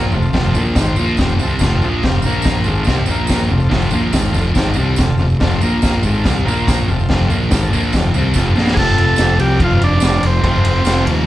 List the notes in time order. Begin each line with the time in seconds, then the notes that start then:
Already playing: A#1 A#2 F3 A#3
0.12 F1 F2 C3 C4 F4 A4, floor tom, tambourine
0.23 tambourine
0.33 F1 F2 C3 F3, kick, snare, floor tom, tambourine
0.44 tambourine
0.55 A#1 A#2 F3 A#3, floor tom, tambourine
0.66 tambourine
0.75 G#1 G#2 D#3 G#3 C4, kick, snare, floor tom, tambourine
0.80 F4 C5
0.87 tambourine
0.96 A#1 A#2 F3 A#3, floor tom, tambourine
1.07 tambourine
1.17 F1 F2 C3 F3 F4, kick, snare, floor tom, tambourine
1.21 C4 G4
1.29 tambourine
1.39 C2 C3 G3 C4 F4 A4, floor tom, tambourine
1.50 tambourine
1.59 F1 F2 C3 F3 C4 F4 A4, kick, snare, floor tom, tambourine
1.70 tambourine
1.82 A#1 A#2 F3 A#3, floor tom, tambourine
2.03 F1 F2 C3 F3 C4 F4 G4, kick, snare, floor tom, tambourine
2.12 tambourine
2.22 A#1 A#2 A#3 F4 A#4, floor tom, tambourine
2.26 F3 A#3
2.33 tambourine
2.42 kick, snare, floor tom, tambourine
2.63 G#1 G#2 C4 F4 A4, floor tom, tambourine
2.68 D#3 G#3
2.75 tambourine
2.84 C2 C3 C4, kick, snare, floor tom, tambourine
2.89 G3
2.95 tambourine
3.06 A#1 A#2 F3, floor tom, tambourine
3.11 A#3 F4 A#4
3.27 kick, snare, floor tom, tambourine
3.49 F1 F2 C3 C4 F4 A4, floor tom, tambourine
3.60 tambourine
3.69 F1 F2 C3 F3, kick, snare, floor tom, tambourine
3.82 tambourine
3.91 A#1 A#2 F3 A#3, floor tom, tambourine
4.12 G#1 G#2 D#3 G#3 C4, kick, snare, floor tom, tambourine
4.16 F4 A4
4.32 F1 F2 C3 F3, floor tom, tambourine
4.44 tambourine
4.54 G#1 G#2 D#3 G#3 C4 F4, kick, snare, floor tom, tambourine
4.59 G4
4.74 C2 C3 G3, floor tom, tambourine
4.78 C4 F4 A4
4.96 F1 F2 C3 C4 F4 A4, kick, snare, floor tom, tambourine
5.18 F1 F2 C3, floor tom, tambourine
5.30 tambourine
5.40 F1 F2 C3 F3 C4 F4 A4, kick, snare, floor tom, tambourine
5.51 tambourine
5.61 A#1 A#2 F3 A#3 F4 A#4, floor tom, tambourine
5.71 tambourine
5.82 kick, snare, floor tom, tambourine
6.03 G#1 G#2 D#3 G#3 C4 F4 A4, floor tom, tambourine
6.24 C2 C3 G3 C4, kick, snare, floor tom, tambourine
6.37 tambourine
6.43 A#1 A#2 F3 A#3 F4 A#4, floor tom
6.48 A#3, tambourine
6.67 kick, snare, floor tom, tambourine
6.87 F1 F2 C3 C4 F4 A4, floor tom, tambourine
6.99 tambourine
7.09 F1 F2 C3 F3, kick, snare, floor tom
7.29 A#1 A#2 F3 A#3, floor tom, tambourine
7.50 G#1 G#2 D#3 G#3 C4 F4 A4, kick, snare, floor tom, tambourine
7.72 A#1 A#2 F3 A#3, floor tom, tambourine
7.83 tambourine
7.93 F1 F2 C3 F3, kick, snare, floor tom, tambourine
7.98 C4 F4 A4
8.14 C2 C3 G3 C4 F4, floor tom, tambourine
8.18 C4 A4
8.34 F1 F2 C3 F3 C4 A4, kick, snare, tambourine
8.38 F4
8.55 A#1 A#2 F3 A#3, snare, tambourine
8.66 snare, tambourine
8.74 F1 F2 F4 G#4, kick, crash
8.78 C3 F3 C4 A4
8.98 F1, ride
9.16 F1 C4 F4, snare, ride, tambourine
9.21 G4
9.38 C2 G4, ride
9.60 F1 C4 F4 A4, kick, ride
9.64 F4
9.81 F1 D4, ride
10.00 F1 C4 F4 A4, snare, ride, tambourine
10.06 D4
10.23 F1 C4, ride
10.42 F1 F2 C3 C4 F4 A4, kick, ride
10.46 F3
10.64 F1, ride
10.85 F1 C4 F4 A4, snare, ride, tambourine
11.06 D#2, ride